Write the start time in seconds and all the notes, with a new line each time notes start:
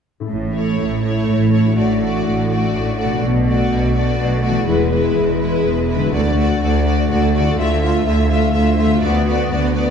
0.20 A2 C#4 E4
0.26 A1 A2 A4
0.54 A3 E4 C#5
0.78 A1 A2
1.03 A3 E4 C#5
1.27 A1 A2
1.51 A3 E4 C#5
1.59 A2
1.64 D4
1.68 F#4
1.72 A1 A2 A4
1.77 A3 F#4 D5
2.00 A3 F#4 D5
2.24 A1 A2
2.50 A3 F#4 D5
2.74 A1 A2
2.97 A3 F#4 D5
3.05 B2
3.09 D4
3.14 F#4
3.18 A4
3.23 B1 B2
3.47 A3 F#4 D5
3.71 B1 B2
3.95 A3 F#4 D5
4.18 B1 B2
4.42 A3 F#4 D5
4.49 E3
4.54 B3
4.58 E4
4.63 G#4
4.67 E1 E2 G#3 E4 B4
4.91 G#3 E4 B4
5.16 E1 E2
5.40 G#3 E4 B4
5.64 E1 E2
5.88 G#3 E4 B4
5.96 D3
6.00 D4
6.05 F#4
6.09 D2 F#4 A4
6.14 D2 A3 D5
6.38 A3 F#4 D5
6.61 D2 A3 F#4 D5
6.86 A3 F#4 D5
7.09 D2 A3 F#4 D5
7.34 A3 F#4 D5
7.39 D3
7.44 E4
7.49 F4
7.53 A4
7.57 D2 A3 F4 E5
7.81 A3 F4 E5
8.05 D2 A3 F4 E5
8.30 A3 F4 E5
8.53 D2 A3 F4 E5
8.78 A3 F4 E5
8.85 D3
8.89 B3
8.94 F#4
8.98 B4 D5
9.02 D2 B3 F#4
9.27 B3 F#4 D5
9.50 D2 B3 F#4 D5
9.74 B3 F#4 D5